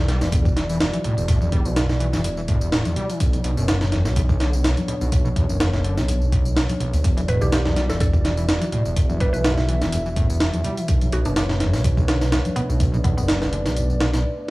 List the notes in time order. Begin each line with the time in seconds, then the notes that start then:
Already playing: B1 G3 E4 F#4 D5
0.08 G3, snare, closed hi-hat
0.21 E1 E3, snare, tambourine
0.32 E2, kick, closed hi-hat, tambourine
0.45 D3, kick, tambourine
0.56 E3, snare, closed hi-hat
0.69 E3, tambourine
0.80 E2, snare, closed hi-hat, tambourine
0.93 E3, closed hi-hat, tambourine, high conga
1.04 A2, closed hi-hat, low conga
1.17 E1 E2, tambourine
1.28 E1 A2, kick, closed hi-hat, tambourine
1.41 E2, tambourine, high conga
1.52 E1 G3, kick, closed hi-hat
1.65 B1 E3, tambourine
1.76 E2, snare, closed hi-hat, tambourine
1.89 D3, snare, tambourine
2.00 E3, closed hi-hat
2.13 E1 E3, snare, tambourine
2.24 E2, closed hi-hat, tambourine
2.37 E3, tambourine
2.48 A2, kick, closed hi-hat
2.61 E2, tambourine
2.72 A2, snare, closed hi-hat, tambourine
2.85 E2, closed hi-hat, tambourine, high conga
2.96 G3, closed hi-hat, low conga
3.09 E3, closed hi-hat, tambourine
3.20 B1 B3 D4 A4 C#5, kick, closed hi-hat, tambourine
3.33 A2, closed hi-hat, tambourine, high conga
3.44 B1 B2, closed hi-hat
3.57 F#1 B2, tambourine
3.68 B1, snare, closed hi-hat, tambourine
3.81 B2, snare, tambourine
3.92 E2, snare, closed hi-hat
4.05 B1, snare, tambourine
4.16 E2, kick, closed hi-hat, tambourine
4.29 B1, kick, tambourine
4.40 D3, snare, closed hi-hat
4.53 B2, tambourine
4.64 B1, snare, closed hi-hat, tambourine
4.77 A2, closed hi-hat, tambourine, high conga
4.88 B2, closed hi-hat, low conga
5.01 B1 B2, tambourine
5.12 B1, kick, closed hi-hat, tambourine
5.25 B2, tambourine, high conga
5.36 B1 E2, kick, closed hi-hat
5.49 F#1 B1, tambourine
5.60 E2, snare, closed hi-hat, tambourine
5.73 B1, snare, tambourine
5.84 D3, closed hi-hat
5.97 B1 B2, snare, tambourine
6.08 B1, closed hi-hat, tambourine
6.21 A2, tambourine
6.32 B1, kick, closed hi-hat
6.45 D2, tambourine
6.56 B1, snare, closed hi-hat, tambourine
6.69 B1, closed hi-hat, tambourine, high conga
6.80 B1, closed hi-hat, low conga
6.93 A1 D2, closed hi-hat, tambourine
7.04 E1 E2 G3 E4 F#4 D5, kick, closed hi-hat, tambourine
7.17 E3, closed hi-hat, tambourine, high conga
7.28 E1 A2 B4, closed hi-hat
7.41 B1 E2 G4, tambourine
7.52 E2 G4, snare, closed hi-hat, tambourine
7.65 E2, snare, tambourine
7.76 G3, snare, closed hi-hat
7.89 E1 E3 A4, snare, tambourine
8.00 E2 A4, kick, closed hi-hat, tambourine
8.13 D3, kick, tambourine
8.24 E3, snare, closed hi-hat
8.37 E3, tambourine
8.48 E2, snare, closed hi-hat, tambourine
8.61 E3, closed hi-hat, tambourine, high conga
8.72 A2, closed hi-hat, low conga
8.85 E1 E2, tambourine
8.96 E1 E2 E5, kick, closed hi-hat, tambourine
9.09 E2, tambourine, high conga
9.20 E1 G3 B4, kick, closed hi-hat
9.33 B1 E3 B4, tambourine
9.44 E2, snare, closed hi-hat, tambourine
9.58 D3, snare, tambourine
9.69 E3, closed hi-hat
9.81 E1 E3, snare, tambourine
9.92 E2, closed hi-hat, tambourine
10.06 E3, tambourine
10.16 A2, kick, closed hi-hat
10.30 E2, tambourine
10.40 E2, snare, closed hi-hat, tambourine
10.53 E2, closed hi-hat, tambourine, high conga
10.64 G3, closed hi-hat, low conga
10.77 E3, closed hi-hat, tambourine
10.88 B1 A3 D4 B4 C#5, kick, closed hi-hat, tambourine
11.01 A2, closed hi-hat, tambourine, high conga
11.12 B1 B2 F#4, closed hi-hat
11.25 F#1 B2 D4, tambourine
11.36 B1 D4, snare, closed hi-hat, tambourine
11.49 B2, snare, tambourine
11.60 E2, snare, closed hi-hat
11.73 B1, snare, tambourine
11.84 B1, kick, closed hi-hat, tambourine
11.97 B1, kick, tambourine
12.08 D3, snare, closed hi-hat
12.21 B2, snare, tambourine
12.32 B1, snare, closed hi-hat, tambourine
12.45 A2, closed hi-hat, tambourine, high conga
12.56 B2 B3, closed hi-hat, low conga
12.69 B1 B2, tambourine
12.80 B1 D5, kick, closed hi-hat, tambourine
12.93 B2, tambourine, high conga
13.04 B1 E2 B3, kick, closed hi-hat
13.17 F#1 B1 B3, tambourine
13.28 B1, snare, closed hi-hat, tambourine
13.42 B1, snare, tambourine
13.53 D3, closed hi-hat
13.66 B1 B2, snare, tambourine
13.77 B1, closed hi-hat, tambourine
13.90 A2, tambourine
14.00 B2, snare, closed hi-hat
14.13 B2, snare, tambourine